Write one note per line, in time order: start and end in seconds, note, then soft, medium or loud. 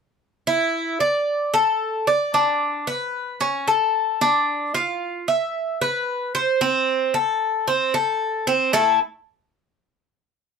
0.47 0.99 E4 medium
1.00 1.52 D5 medium
1.54 2.06 A4 medium
2.07 2.33 D5 medium
2.34 2.86 D4 medium
2.87 3.39 B4 medium
3.41 3.67 C#4 medium
3.68 4.20 A4 medium
4.21 4.73 D4 medium
4.75 5.26 F4 medium
5.28 5.80 E5 medium
5.81 6.33 B4 medium
6.35 6.61 C5 medium
6.61 7.13 C4 medium
7.14 7.66 A4 medium
7.68 7.93 C4 medium
7.94 8.46 A4 medium
8.47 8.73 C4 medium
8.73 8.98 A3 medium
8.73 8.99 E4 medium
8.73 8.99 A4 loud